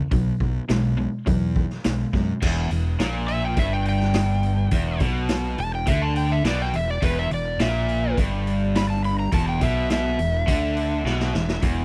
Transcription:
0.11 B1 B2 F#3, kick, open hi-hat
0.40 B1, kick
0.69 B1 B2 G#3, snare, open hi-hat
0.97 B2 G#3
1.26 E2 B2 F#3, kick, open hi-hat
1.56 kick
1.70 snare
1.84 B1 B2 G#3, snare, open hi-hat
2.13 F#2 B2 G#3, kick, snare
2.42 E1 E2, kick, crash
2.71 E1 E2, open hi-hat
3.00 A#1 A#2, snare, open hi-hat
3.28 E5, open hi-hat
3.45 G5
3.57 G1 G2 E5, kick, open hi-hat
3.73 G5
3.86 G5, open hi-hat
4.00 snare
4.14 snare, open hi-hat
4.43 open hi-hat
4.71 E1 E2, kick, open hi-hat
5.00 B1 B2, kick, open hi-hat
5.29 snare, open hi-hat
5.58 E1 E2 A5, open hi-hat
5.75 G5
5.87 D2 D3 E5, kick, open hi-hat
6.02 A5
6.16 G5, open hi-hat
6.32 E5
6.44 B1 B2 D5, snare, open hi-hat
6.62 G5
6.73 E1 E2 E5, open hi-hat
6.90 D5
7.02 E1 E2 B4, kick, open hi-hat
7.19 E5
7.31 E1 E2 D5, open hi-hat
7.60 A#1 A#2 E5, snare, open hi-hat
7.89 open hi-hat
8.17 G1 G2, kick, open hi-hat
8.47 open hi-hat
8.75 B5, snare, open hi-hat
8.90 A5
9.04 B5, open hi-hat
9.19 A#5
9.32 E1 E2 A5, kick, open hi-hat
9.49 G5
9.61 B1 B2 E5, kick, open hi-hat
9.90 E5, snare, open hi-hat
10.18 E1 E2, open hi-hat
10.47 D2 D3, kick, open hi-hat
10.77 open hi-hat
11.04 B1 B2, snare
11.20 snare
11.34 E1 E2, snare
11.49 snare
11.62 E1 E2, kick, open hi-hat

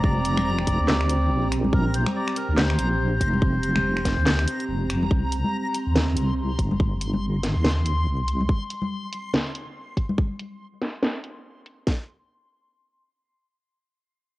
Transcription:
Already playing: F1 C4 G4 A#5
0.04 D5, kick
0.25 closed hi-hat
0.37 finger snap, high conga
0.59 finger snap
0.67 kick, closed hi-hat
0.80 D2
0.88 snare, clap, low conga
1.01 finger snap
1.09 closed hi-hat
1.31 A#1
1.52 finger snap, closed hi-hat
1.64 high conga
1.73 A#1 A#4, kick
1.94 C5, closed hi-hat
2.06 finger snap, high conga
2.15 D5
2.28 finger snap
2.36 A#4, closed hi-hat
2.49 D2
2.57 C5, snare, clap, low conga
2.70 finger snap
2.79 A#1, closed hi-hat
3.21 F1, kick, closed hi-hat
3.33 high conga
3.42 kick
3.63 closed hi-hat
3.76 finger snap, high conga, low conga
3.97 finger snap
4.05 kick, snare, closed hi-hat
4.18 D2
4.27 snare, clap, low conga
4.39 finger snap
4.48 closed hi-hat
4.60 closed hi-hat
4.69 F1
4.90 F1, finger snap, closed hi-hat
5.03 high conga
5.11 C2 C4 G4 C6, kick
5.32 closed hi-hat
5.44 high conga
5.75 closed hi-hat
5.87 D#2
5.96 snare, low conga
6.17 C2, closed hi-hat
6.59 G1, kick, closed hi-hat
6.71 high conga
6.80 kick
7.01 closed hi-hat
7.13 high conga
7.43 snare, closed hi-hat
7.56 D#2
7.65 snare, low conga
7.86 closed hi-hat
8.07 C2
8.28 closed hi-hat
8.41 high conga
8.49 kick
8.70 closed hi-hat
8.82 high conga
9.12 closed hi-hat
9.33 snare, low conga
9.55 closed hi-hat
9.97 kick, closed hi-hat
10.09 high conga
10.18 kick
10.39 closed hi-hat
10.82 snare, closed hi-hat
11.03 snare
11.24 closed hi-hat
11.66 closed hi-hat
11.87 kick, snare

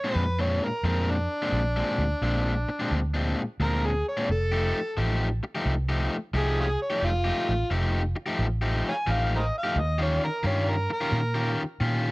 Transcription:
Already playing: C#5
0.04 A#2 G#3 C4 D4
0.15 F2 B4
0.39 A#2 G#3 C4 D4 C#5
0.64 A#4
0.83 F2 A#2 G#3 C4 D4
0.88 A#4
1.12 D4
1.42 A#2 G#3 C4 D4
1.52 A#1
1.76 A#2 G#3 C4 D4
1.98 D2
2.21 A#1 A#2 G#3 C4 D4
2.69 muted overdriven electric guitar stroke
2.80 A#2 G#3 C4 D4
2.91 D2
3.14 A#2 G#3 C4 D4
3.60 D2 A#2 G#3 C4 D4 A#4
3.86 G#4
4.08 C#5
4.17 A#2 G#3 C4 D4
4.29 F1 A4
4.52 F3 A3 D#4 G4
4.97 A1 F3 A3 D#4 G4
5.43 muted overdriven electric guitar stroke
5.55 F3 A3 D#4 G4
5.65 C2
5.89 F3 A3 D#4 G4
6.33 C2 F3 A3 D#4 G4 G#4
6.60 C#4 F4 G#4
6.82 C#5
6.90 F3 A3 D#4 G4
7.02 F1 F4
7.25 F3 A3 D#4 G4
7.49 A1
7.70 F1 F3 A3 D#4 G4
8.16 muted overdriven electric guitar stroke
8.26 F3 A3 D#4 G4
8.39 A1
8.62 F3 A3 D#4 G4
8.89 C#5 F5 G#5
9.07 A1 F3 A3 D#4 G4
9.12 F5
9.36 A#4 C5 D#5
9.58 F5
9.64 F3 A3 D#4 G4
9.76 D#2
9.80 D#5
9.98 D#3 C#4 F4 G4
10.03 C#5
10.24 A#4
10.43 G2 D#3 C#4 F4 G4 C#5
10.70 A#4
10.90 A#4, muted overdriven electric guitar stroke
11.01 D#3 C#4 F4 G4
11.12 A#2
11.35 D#3 C#4 F4 G4
11.80 A#2 D#3 C#4 F4 G4

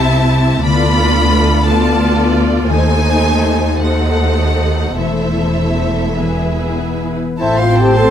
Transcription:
Already playing: C2 C3 A3 C4 E4 C5 E5 A5
0.31 E4
0.64 D2 D3 B3 F4 A4 D5 B5
0.98 D4
1.33 A3
1.66 B3 F4 A4 D5 A5
2.00 B4
2.35 F4
2.67 D#2 D#3 A3 D#4 A4 C5 G#5
3.04 D#4
3.41 A3
3.78 A3 D#4 F#4 A4 C5 F#5
4.19 C5
4.58 F#4
4.96 E1 E2 E3 A3 E4 A4 C5 E5
5.39 A3
5.81 A4 C5
6.19 E3 B3 G#4 B4
6.23 E4
6.62 B3
7.02 G#4 B4
7.38 A1 A2 C4 E4 A4 C5 E5 A5
7.58 F4 C5 F5 C6
7.75 C4 G4 A4 G5 A5
7.81 G5
7.95 A4 C5 A5 C6

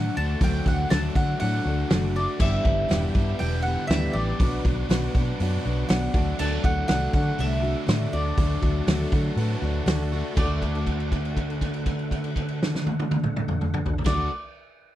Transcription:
Already playing: D3 F#3 A3 D4 F#4 A4 D5 F#5 D6
0.16 D2 A3 D4 F#4 A5
0.41 D2 D3 F#3 A3 D4 F#4 A4 C5 G5, kick, open hi-hat
0.66 D2 A3 D4 F#4 F#5, kick
0.89 D2 D3 F#3 A3 D4 F#4 A4 D5 A5, snare, open hi-hat
0.95 F#4
1.15 D3 A3 D4 F#4 F#5, kick
1.40 A2 D3 F#3 A3 D4 F#4 A4 D5 F#5, open hi-hat
1.65 D2 A3 D4 F#4
1.90 F#1 D3 F#3 A3 D4 F#4 A4 D5, snare, open hi-hat
2.16 A3 D4 F#4 D5
2.39 G1 G2 D3 E3 G3 B3 D4 E4 G4 B4 D5 E5 G5 E6, kick, crash
2.65 G1 E3 G3 B3 D4 G4, kick
2.88 E1 G2 D3 E3 G3 B3 D4 E4 G4 B4 D5, snare, open hi-hat
3.14 G2 E3 G3 B3 D4 G4, kick
3.39 E1 G2 D3 E3 G3 B3 D4 E4 G4 B4 D5 G5, open hi-hat
3.62 G3 B3 G4 F#5
3.67 E3 D4
3.87 D2 G2 D3 E3 G3 E4 G4 B4 D5 E5, snare, open hi-hat
3.92 B3
4.13 A1 G3 B3 D4 G4 D5
4.18 E3
4.39 B1 B2 F#3 B3 D4 F#4 B4 D5 F#5 D6, kick, open hi-hat
4.65 B1 B3 D4 F#4, kick
4.89 B1 B2 F#3 B3 D4 F#4 B4 D5, snare, open hi-hat
5.14 B2 D4 F#4, kick
5.18 B3
5.39 F#2 B2 F#3 B3 D4 F#4 B4 D5, open hi-hat
5.65 B1 B3 D4 F#4
5.89 B1 B2 F#3 B3 D4 F#4 B4 D5 F#5, snare, open hi-hat
6.14 D2 A3 D4 F#4 A4 D5 F#5, kick
6.18 D3 F#3
6.39 D2 D3 F#3 A3 D4 F#4 A5, crash
6.64 D2 A3 D4 F#4 F#5, kick
6.88 C2 D3 F#3 A3 D4 F#4 A4 D5 F#5, snare, open hi-hat
7.13 D3 A3 D4 F#4 F#5, kick
7.38 C2 D3 F#3 A3 D4 F#4 A4 D5 E5, open hi-hat
7.62 A3 D4 F#4
7.87 A2 D3 A3 D4 F#4 A4 D5, snare, open hi-hat
8.13 D2 A3 D4 F#4 D5 A5
8.37 D2 D3 F#3 A3 D4 F#4 A4 D5, kick, open hi-hat
8.62 D2 A3 D4 F#4, kick
8.87 D2 D3 F#3 A3 D4 F#4 A4 D5, snare, open hi-hat
9.12 D3 A3 D4 F#4, kick
9.36 A2 D3 F#3 A3 D4 F#4 A4 B4, open hi-hat
9.40 F#4
9.62 D2 A3 D4 F#4
9.86 D2 D3 A3 D4 F#4 A4 D5, snare, open hi-hat
10.13 A3 D4 F#4
10.36 D2 D3 D4 F#4 A4 D5 F#5, kick, crash
10.40 A3 D4 F#4
10.46 F#4
10.62 kick, crash
10.75 crash
10.87 kick, crash
11.00 crash
11.12 kick, crash
11.25 crash
11.37 kick, crash
11.50 crash
11.61 kick, crash
11.74 crash
11.86 kick, crash
11.99 crash
12.11 kick, crash
12.24 crash
12.36 kick, crash
12.48 crash
12.63 snare
12.75 snare
12.87 high tom
13.00 high tom
13.11 high tom
13.24 mid tom
13.36 mid tom
13.48 mid tom
13.61 mid tom
13.74 mid tom
13.86 floor tom
13.98 floor tom
14.04 D2 D3 A3 F#4 A4 D5, kick, snare, crash
14.08 D4 F#4 A4 D5 F#5
14.14 F#4

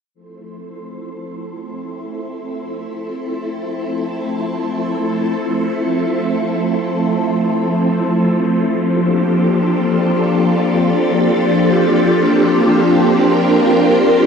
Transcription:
0.14 F3 A3 C4 E4 A4 C5
8.79 A#3 D4 G4 A4
13.12 A#4

